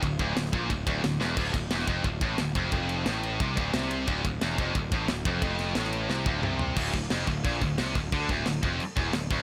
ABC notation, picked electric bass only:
X:1
M:4/4
L:1/8
Q:1/4=178
K:Dm
V:1 name="Picked electric bass" clef=bass
D,,, D,,, D,,, B,,, D,,, D,,, D,,, E,,, | D,,, D,,, E,,, F,,, D,,, A,,, D,,, F,,, | F,,,2 A,,,2 C,, D,,, C,,2 | D,,, D,,, E,,, F,,, D,,, A,,, D,,, F,,, |
F,,,2 A,,,2 C,, D,,, C,,2 | D,,, D,,, F,,, D,,, B,,, D,,, C,, D,,, | D,, D,,, D,,, F,,, z E,,, D,,, D,,, |]